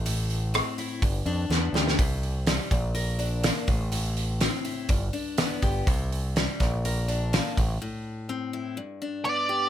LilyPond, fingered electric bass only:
\new Staff \with { instrumentName = "Fingered electric bass" } { \clef bass \time 4/4 \key a \minor \tempo 4 = 124 a,,4. r8 g,,8 f,8 e,8 d,8 | c,4. bes,,2 a,,8~ | a,,4. r8 g,,8 r4 g,,8 | c,4. bes,,2 a,,8 |
r1 | }